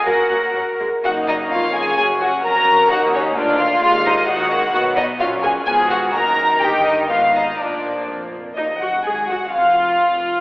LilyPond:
<<
  \new Staff \with { instrumentName = "Violin section" } { \time 2/4 \key fis \major \tempo 4 = 128 fis''4 r4 | fis''8 dis''8 eis''8 gis''8 | gis''8 fis''8 ais''4 | fis''8 cis''8 d''8 eis''8 |
eis''8 dis''8 fis''4 | \key ees \minor fis''8 ees''8 f''8 aes''8 | aes''8 ges''8 bes''4 | g''8 ees''8 f''8 ees''8 |
d''4 r4 | ees'8 ges'8 aes'8 ges'8 | f'2 | }
  \new Staff \with { instrumentName = "Violin section" } { \time 2/4 \key fis \major fis'4 r4 | fis'8 dis'8 eis'8 gis'8 | gis'8 fis'8 ais'4 | fis'8 cis'8 d'8 eis'8 |
eis'8 dis'8 fis'4 | \key ees \minor fis'8 ees'8 f'8 aes'8 | aes'8 ges'8 bes'4 | g'8 ees'8 f'8 ees'8 |
d'4 r4 | ees''8 ges''8 aes''8 ges''8 | f''2 | }
  \new Staff \with { instrumentName = "Viola section" } { \time 2/4 \key fis \major << { ais8 ais8 fis8 gis8 | dis'4 cis'4~ | cis'4 cis'4 | dis'4 eis'4 |
eis'4 dis'8 ais8 | \key ees \minor b4 des'4 | ces'4 bes4 | ees'4 ces'4 |
bes4. r8 | ees'8 ges'8 aes'8 ges'8 | f'2 | } \\ { fis8 fis8 r4 | ais2 | fis2 | ais4 ais4 |
gis2 | fis4 fis4 | f4 ees4~ | ees2 |
f4. r8 | r2 | r2 | } >> }
  \new Staff \with { instrumentName = "Cello section" } { \clef bass \time 2/4 \key fis \major ais'4. r8 | fis,4 eis,4 | fis,4 eis,4 | dis,4 d,4 |
dis,4 dis4 | \key ees \minor b,4 bes,4 | aes,4 ges,4 | g,4 aes,4 |
bes,4 f,4 | ees,8 ges,8 aes,8 ges,8 | f,2 | }
  \new Staff \with { instrumentName = "Double bass section" } { \clef bass \time 2/4 \key fis \major fis,8 fis,8 fis,8 fis,8 | fis,,4 eis,,4 | fis,,4 eis,,4 | dis,4 d,4 |
dis,4 dis,4 | \key ees \minor b,,4 bes,,4 | aes,,4 ges,,4 | g,,4 aes,,4 |
bes,,4 f,,4 | ees,8 ges,,8 aes,,8 ges,,8 | f,,2 | }
>>